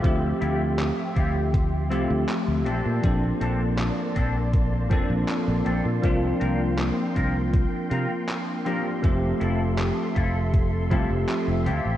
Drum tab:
HH |xxxxxxxx|xxxxxxxx|xxxxxxxx|xxxxxxxx|
CP |--x---x-|--x---x-|--x---x-|--x---x-|
BD |o--oo---|o--ooo--|o--oo---|o--ooo--|